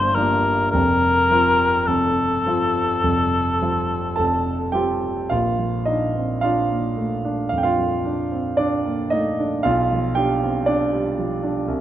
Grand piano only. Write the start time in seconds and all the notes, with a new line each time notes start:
Already playing: G1 G2 F3 A#3 D4
0.16 F3 A#3 D4
0.73 F1 F2
1.30 F3 C4 F4
1.88 F1 F2
2.46 F3 C4 F4
3.03 F1 F2
3.61 F3 C4 F4
4.16 F1 F2 A4 A5
4.72 F3 C4 F4 G4 G5
5.30 A#1 F4 F5
5.59 F3
5.85 D4 D#4 D#5
6.15 C4
6.41 D4 F4 F5
6.70 A#3
6.97 A3
7.25 D4
7.49 F2 F5
7.58 G5
7.63 F4 F5
7.78 F3
8.05 D4
8.32 C4
8.57 D4 D5
8.85 A#3
9.10 A3 D#4 D#5
9.39 D4
9.63 B1 F4 F5
9.92 F3
10.15 D4 G4 G5
10.43 C4
10.66 D4 D5
10.93 G3
11.18 F3
11.43 D4
11.68 C2